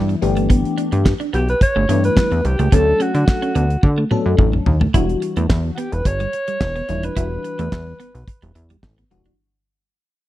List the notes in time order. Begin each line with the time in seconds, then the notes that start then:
Already playing: G2 E3 G3 B3 D4 E4
0.09 muted clean electric guitar stroke, closed hi-hat
0.22 G1 E3 A3 B3 D4 G4, closed hi-hat
0.37 A3, closed hi-hat
0.50 B3, kick, closed hi-hat
0.65 closed hi-hat
0.78 D4, closed hi-hat
0.92 G2, muted clean electric guitar stroke, closed hi-hat
1.05 muted clean electric guitar stroke, kick, snare, clap
1.20 D4, closed hi-hat
1.33 B1 B3 G4, closed hi-hat
1.48 B4, closed hi-hat
1.61 C#5, muted clean electric guitar stroke, kick, closed hi-hat
1.76 G1 A3
1.89 G2 E3 A3 B3 D4 E4, closed hi-hat
2.04 B4, closed hi-hat
2.17 G3, kick, snare, clap
2.32 E2, muted clean electric guitar stroke, closed hi-hat
2.45 C2 G4, closed hi-hat
2.59 C#2 A3, closed hi-hat
2.72 D2 F#3 A3 B3 C#4 D4 A4, kick, closed hi-hat
3.00 C#4 F#4, closed hi-hat
3.15 D3, muted clean electric guitar stroke, closed hi-hat
3.28 muted clean electric guitar stroke, kick, snare, clap
3.42 C#4, closed hi-hat
3.55 D2 B3, closed hi-hat
3.70 closed hi-hat
3.83 D3, muted clean electric guitar stroke, kick, high tom
3.98 A3
4.11 F#3 A3 B3 C#4 D4 A4, mid tom
4.26 F#2
4.38 A1 F#3, kick, mid tom
4.53 muted clean electric guitar stroke, mid tom
4.66 D#2, floor tom
4.81 A3, floor tom
4.94 E1 E3 G3 D4 E4 F#4, kick, closed hi-hat
5.09 closed hi-hat
5.22 muted clean electric guitar stroke, closed hi-hat
5.36 E2 A3, closed hi-hat
5.50 E2, kick, snare, clap
5.75 B3 F#4 G4, closed hi-hat
5.92 E1 B4, closed hi-hat
6.05 G1 C#5, kick, closed hi-hat
6.20 G3, closed hi-hat
6.33 muted clean electric guitar stroke, closed hi-hat
6.48 G3, closed hi-hat
6.61 E1, kick, snare, clap
6.76 B3, closed hi-hat
6.88 D#1 E3 G3 D4 E4, muted clean electric guitar stroke, closed hi-hat
7.03 D4 B4, closed hi-hat
7.16 E1 E3 F#3 D4 E4 F#4, kick, closed hi-hat
7.23 G3
7.44 muted clean electric guitar stroke, closed hi-hat
7.59 E2 A3, closed hi-hat
7.72 E2, kick, snare, clap
8.00 B3, closed hi-hat
8.15 B1, closed hi-hat
8.28 kick, closed hi-hat
8.42 E1 G3, closed hi-hat
8.55 E2, muted clean electric guitar stroke, closed hi-hat
8.70 G3, closed hi-hat
8.83 A1, kick, snare, clap
8.98 B3, closed hi-hat
9.11 D#1 E3 G3 D4 F#4, muted clean electric guitar stroke, closed hi-hat
9.26 D4